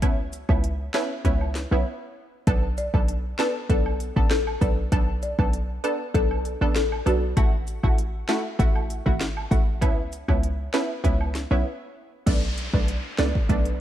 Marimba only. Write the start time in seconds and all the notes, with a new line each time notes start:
2.78 D5
3.39 B4
3.70 A4
4.31 A4
4.61 B4
5.23 D5
5.84 B4
6.14 A4
6.76 A4
7.07 F#4